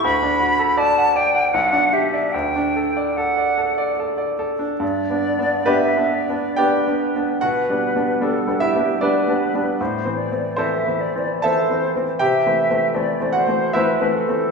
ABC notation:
X:1
M:3/4
L:1/16
Q:1/4=74
K:G
V:1 name="Flute"
b4 a2 g2 f2 e2 | g4 f4 z4 | d4 e2 d2 B4 | B4 A2 G2 B4 |
c2 d2 e2 d2 c2 z2 | e4 d2 c2 B2 A2 |]
V:2 name="Grand piano"
z12 | z12 | z4 [B,GB]4 [Gdg]4 | [Ff]6 [Ee]2 [DBd]4 |
z4 [CAc]4 [Aea]4 | [Gg]6 [Ff]2 [Ece]4 |]
V:3 name="Grand piano"
D,, D F A d f d f B,,, D G d | D,, D A d A d A d A d A D | (3G,,2 [B,D]2 [B,D]2 (3D2 [B,D]2 [B,D]2 (3[B,D]2 [B,D]2 [B,D]2 | (3B,,2 [G,B,D]2 [G,B,D]2 (3[G,B,D]2 [G,B,D]2 [G,B,D]2 (3[G,B,]2 [G,B,D]2 [G,B,D]2 |
(3A,,2 [E,C]2 [E,C]2 (3E,2 [E,C]2 [E,C]2 (3[E,C]2 [E,C]2 [E,C]2 | (3C,2 [E,A,C]2 [E,A,C]2 (3[E,A,C]2 [E,A,C]2 [E,A,C]2 (3[E,A,C]2 [E,A,C]2 [E,A,C]2 |]